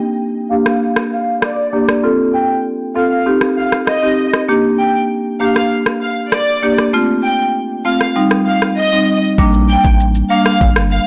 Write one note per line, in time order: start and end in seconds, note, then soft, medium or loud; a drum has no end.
0.00 0.15 A#3 medium
0.00 0.15 D4 medium
0.00 0.15 G4 loud
0.50 0.68 A#3 medium
0.50 0.69 D4 medium
0.50 0.69 G4 medium
0.50 0.62 F5 medium
0.66 0.78 F5 medium
0.66 cross-stick medium
0.96 cross-stick medium
1.12 1.23 F5 medium
1.42 1.86 D5 medium
1.42 cross-stick medium
1.73 1.91 A#3 medium
1.73 1.91 D4 medium
1.73 1.91 G4 medium
1.89 cross-stick medium
2.03 2.60 C4 medium
2.03 2.60 F4 medium
2.03 2.60 A4 loud
2.34 2.46 G5 medium
2.95 3.13 C4 medium
2.95 3.14 F4 medium
2.95 3.14 A4 medium
2.95 3.07 F5 medium
3.11 3.23 F5 medium
3.26 3.96 C4 medium
3.26 3.97 D#4 medium
3.26 3.97 G4 medium
3.41 cross-stick medium
3.57 3.69 F5 medium
3.72 cross-stick medium
3.87 4.31 D#5 medium
3.87 cross-stick medium
4.03 4.21 C4 medium
4.03 4.21 D#4 medium
4.03 4.21 G4 medium
4.33 cross-stick medium
4.49 5.05 A#3 medium
4.49 5.05 D4 medium
4.49 5.05 G4 loud
4.79 4.91 G5 medium
5.40 5.58 A#3 medium
5.40 5.58 D4 medium
5.40 5.59 G4 medium
5.40 5.52 F5 medium
5.56 5.67 F5 medium
5.56 cross-stick medium
5.86 cross-stick medium
6.02 6.13 F5 medium
6.32 6.75 D5 medium
6.32 cross-stick loud
6.63 6.81 A#3 medium
6.63 6.81 D4 medium
6.63 6.81 G4 medium
6.78 cross-stick medium
6.93 7.50 A3 medium
6.93 7.50 C4 medium
6.93 7.50 F4 medium
7.24 7.36 G5 medium
7.85 8.03 A3 medium
7.85 8.03 C4 medium
7.85 8.03 F4 medium
7.85 7.97 F5 medium
8.01 8.12 F5 medium
8.01 cross-stick medium
8.16 8.86 G3 medium
8.16 8.86 C4 medium
8.16 8.87 D#4 medium
8.31 cross-stick medium
8.47 8.58 F5 medium
8.62 cross-stick medium
8.77 9.20 D#5 medium
8.92 9.10 G3 medium
8.92 9.10 C4 medium
8.92 9.11 D#4 medium
9.38 9.77 A#1 loud
9.38 9.95 G3 medium
9.38 9.95 A#3 medium
9.38 9.95 D4 loud
9.38 kick loud
9.38 shaker medium
9.54 shaker medium
9.69 9.81 G5 medium
9.69 shaker soft
9.84 10.23 A1 medium
9.84 kick loud
9.84 shaker medium
10.00 shaker medium
10.15 shaker medium
10.30 10.48 G3 medium
10.30 10.48 A#3 medium
10.30 10.48 D4 medium
10.30 10.42 F5 medium
10.30 shaker soft
10.46 10.57 F5 medium
10.46 cross-stick medium
10.46 shaker medium
10.61 11.00 G1 medium
10.61 kick loud
10.61 shaker medium
10.76 cross-stick loud
10.76 shaker medium
10.91 11.03 F5 medium
10.91 shaker medium